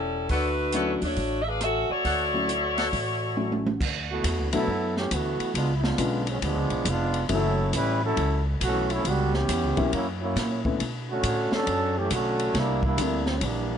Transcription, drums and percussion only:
0.29 kick soft
0.29 open hi-hat soft
0.72 closed hi-hat medium
1.02 open hi-hat soft
1.16 kick soft
1.16 open hi-hat soft
1.61 cross-stick medium
1.61 closed hi-hat soft
2.05 kick soft
2.05 open hi-hat soft
2.49 closed hi-hat soft
2.78 snare soft
2.78 open hi-hat soft
2.93 kick soft
2.93 open hi-hat soft
3.37 high tom soft
3.52 high tom medium
3.66 high tom medium
3.81 kick medium
3.81 crash medium
4.24 kick soft
4.24 hi-hat pedal soft
4.24 ride medium
4.53 ride medium
4.68 kick soft
4.97 snare soft
5.11 kick soft
5.11 hi-hat pedal medium
5.11 ride medium
5.40 ride soft
5.55 kick soft
5.55 ride medium
5.84 snare medium
5.98 kick soft
5.98 hi-hat pedal medium
5.98 ride medium
6.27 ride soft
6.42 kick soft
6.42 ride medium
6.70 ride soft
6.85 kick soft
6.85 hi-hat pedal medium
6.85 ride medium
7.14 ride soft
7.29 kick soft
7.29 ride medium
7.73 kick soft
7.73 hi-hat pedal medium
7.73 ride medium
8.17 kick soft
8.17 ride medium
8.61 kick soft
8.61 hi-hat pedal soft
8.61 ride medium
8.90 ride soft
9.05 kick soft
9.05 ride medium
9.34 snare soft
9.49 kick soft
9.49 hi-hat pedal medium
9.49 ride medium
9.77 kick medium
9.77 ride soft
9.93 kick soft
9.93 ride medium
10.36 kick soft
10.36 snare soft
10.36 hi-hat pedal medium
10.36 ride medium
10.65 kick medium
10.80 kick soft
10.80 ride medium
11.23 kick soft
11.23 hi-hat pedal medium
11.23 ride medium
11.52 snare medium
11.67 kick soft
11.67 ride medium
12.11 kick soft
12.11 hi-hat pedal medium
12.11 ride medium
12.40 ride soft
12.54 kick soft
12.54 snare soft
12.54 ride medium
12.83 kick medium
12.98 kick soft
12.98 hi-hat pedal medium
12.98 ride medium
13.26 snare soft
13.41 kick soft
13.41 ride medium

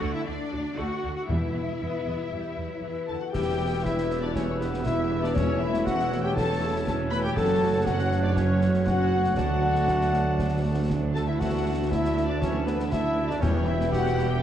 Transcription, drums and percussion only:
3.34 concert bass drum medium
3.34 snare medium
3.34 crash soft
3.86 concert bass drum medium
3.86 snare medium
3.98 snare medium
4.10 snare soft
4.36 concert bass drum medium
4.36 snare medium
4.61 snare soft
4.74 snare medium
4.86 concert bass drum medium
4.86 snare medium
5.24 snare soft
5.36 concert bass drum medium
5.36 snare medium
5.74 snare soft
5.87 concert bass drum medium
5.87 snare medium
6.00 snare soft
6.12 snare soft
6.37 concert bass drum medium
6.37 snare medium
6.87 concert bass drum medium
6.87 snare medium
7.12 snare medium
7.37 concert bass drum medium
7.37 snare medium
7.86 concert bass drum medium
7.86 snare medium
7.99 snare soft
8.12 snare soft
8.36 concert bass drum medium
8.36 snare medium
8.61 snare soft
8.74 snare medium
8.87 concert bass drum medium
8.87 snare medium
9.24 snare medium
9.37 concert bass drum medium
9.37 snare medium
9.75 snare soft
9.88 concert bass drum medium
9.88 snare medium
10.01 snare medium
10.14 snare soft
10.39 concert bass drum medium
10.39 snare medium
10.90 concert bass drum medium
10.90 snare medium
11.15 snare medium
11.41 concert bass drum medium
11.41 snare medium
11.41 crash soft
11.92 concert bass drum medium
11.92 snare medium
12.05 snare medium
12.17 snare soft
12.42 concert bass drum medium
12.42 snare medium
12.67 snare medium
12.80 snare medium
12.92 concert bass drum medium
12.92 snare medium
13.30 snare soft
13.43 concert bass drum medium
13.43 snare medium
13.81 snare medium
13.93 concert bass drum medium
13.93 snare medium
14.06 snare medium
14.19 snare soft

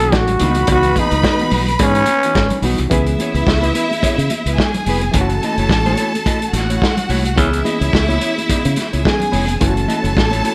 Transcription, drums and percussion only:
0.00 closed hi-hat soft
0.12 kick loud
0.12 snare loud
0.12 cowbell medium
0.12 muted conga soft
0.28 closed hi-hat soft
0.28 muted conga soft
0.28 low conga medium
0.39 closed hi-hat medium
0.39 high conga medium
0.39 low conga medium
0.55 closed hi-hat soft
0.67 kick loud
0.67 closed hi-hat medium
0.67 cowbell medium
0.83 closed hi-hat soft
0.83 muted conga soft
0.96 kick medium
0.96 closed hi-hat medium
0.96 high conga medium
1.11 closed hi-hat medium
1.24 kick loud
1.24 snare loud
1.24 cowbell medium
1.24 muted conga soft
1.39 closed hi-hat soft
1.39 muted conga soft
1.39 high conga medium
1.51 open hi-hat medium
1.51 low conga medium
1.68 closed hi-hat soft
1.68 high conga medium
1.79 kick loud
1.79 closed hi-hat loud
1.79 cowbell medium
1.79 muted conga soft
1.95 closed hi-hat medium
1.95 muted conga soft
2.06 closed hi-hat medium
2.06 high conga medium
2.23 closed hi-hat medium
2.35 kick loud
2.35 snare loud
2.35 cowbell medium
2.35 muted conga soft
2.50 closed hi-hat medium
2.50 low conga medium
2.63 open hi-hat medium
2.63 high conga medium
2.63 low conga medium
2.78 closed hi-hat soft
2.91 kick loud
2.91 closed hi-hat medium
2.91 muted conga soft
3.07 closed hi-hat soft
3.19 closed hi-hat medium
3.19 high conga medium
3.35 closed hi-hat soft
3.47 kick loud
3.47 snare loud
3.47 muted conga soft
3.62 closed hi-hat soft
3.62 high conga medium
3.75 closed hi-hat medium
3.91 closed hi-hat soft
3.91 high conga medium
4.03 kick medium
4.03 closed hi-hat medium
4.03 muted conga soft
4.19 closed hi-hat soft
4.30 closed hi-hat medium
4.30 high conga medium
4.46 closed hi-hat medium
4.58 kick loud
4.58 snare loud
4.58 muted conga soft
4.74 closed hi-hat soft
4.74 low conga medium
4.86 open hi-hat medium
4.86 high conga medium
4.86 low conga medium
5.01 closed hi-hat soft
5.14 kick loud
5.14 closed hi-hat medium
5.30 closed hi-hat soft
5.30 muted conga soft
5.43 closed hi-hat medium
5.43 high conga medium
5.58 closed hi-hat soft
5.69 kick loud
5.69 snare loud
5.86 closed hi-hat soft
5.86 muted conga soft
5.86 high conga medium
5.97 closed hi-hat medium
6.15 closed hi-hat soft
6.15 high conga medium
6.26 kick medium
6.26 closed hi-hat medium
6.42 closed hi-hat soft
6.54 snare soft
6.54 closed hi-hat medium
6.54 high conga medium
6.70 closed hi-hat medium
6.82 kick loud
6.82 snare loud
6.82 muted conga soft
6.97 closed hi-hat medium
6.97 low conga medium
7.09 open hi-hat medium
7.09 high conga medium
7.09 low conga medium
7.25 closed hi-hat soft
7.37 kick loud
7.37 closed hi-hat medium
7.37 muted conga soft
7.53 closed hi-hat soft
7.65 closed hi-hat medium
7.65 high conga medium
7.82 closed hi-hat soft
7.93 kick loud
7.93 snare loud
8.08 closed hi-hat soft
8.08 muted conga soft
8.08 high conga medium
8.21 closed hi-hat medium
8.38 closed hi-hat soft
8.38 high conga medium
8.49 kick loud
8.49 closed hi-hat medium
8.49 muted conga soft
8.65 closed hi-hat medium
8.76 snare soft
8.76 closed hi-hat medium
8.76 high conga medium
8.93 closed hi-hat soft
9.05 kick loud
9.05 snare loud
9.20 closed hi-hat soft
9.20 low conga medium
9.32 open hi-hat medium
9.32 high conga medium
9.32 low conga medium
9.48 closed hi-hat soft
9.61 kick loud
9.61 closed hi-hat medium
9.61 muted conga soft
9.76 closed hi-hat soft
9.76 muted conga soft
9.88 closed hi-hat medium
9.88 high conga medium
10.05 closed hi-hat soft
10.15 kick loud
10.15 snare loud
10.15 muted conga soft
10.31 closed hi-hat soft
10.31 muted conga soft
10.31 high conga medium
10.45 closed hi-hat medium

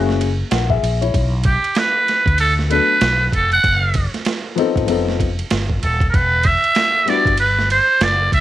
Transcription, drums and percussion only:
0.09 snare soft
0.21 ride medium
0.51 snare loud
0.51 hi-hat pedal medium
0.51 ride medium
0.70 kick medium
0.84 ride medium
1.02 ride soft
1.14 kick medium
1.14 ride medium
1.44 kick medium
1.44 ride medium
1.64 ride soft
1.75 snare loud
1.75 hi-hat pedal soft
1.75 ride medium
2.08 snare soft
2.08 ride soft
2.26 kick medium
2.26 ride soft
2.38 ride medium
2.59 snare soft
2.71 ride medium
3.01 snare loud
3.01 hi-hat pedal medium
3.01 ride medium
3.33 kick medium
3.33 ride medium
3.52 ride soft
3.64 kick medium
3.64 ride medium
3.94 kick medium
3.94 ride medium
4.14 snare soft
4.14 ride soft
4.25 snare loud
4.25 hi-hat pedal medium
4.25 ride medium
4.58 ride medium
4.76 kick medium
4.76 ride soft
4.88 ride medium
5.09 snare soft
5.20 kick medium
5.20 ride medium
5.39 ride soft
5.51 snare loud
5.51 hi-hat pedal soft
5.51 ride medium
5.70 kick medium
5.83 ride medium
6.00 kick medium
6.00 ride soft
6.14 kick loud
6.14 ride medium
6.43 kick loud
6.43 ride medium
6.64 ride soft
6.75 snare medium
6.75 hi-hat pedal soft
6.75 ride medium
7.08 snare soft
7.08 ride medium
7.26 kick medium
7.26 ride soft
7.38 ride medium
7.59 snare soft
7.70 ride medium
8.01 snare loud
8.01 hi-hat pedal medium
8.01 ride medium
8.32 kick medium
8.32 ride medium

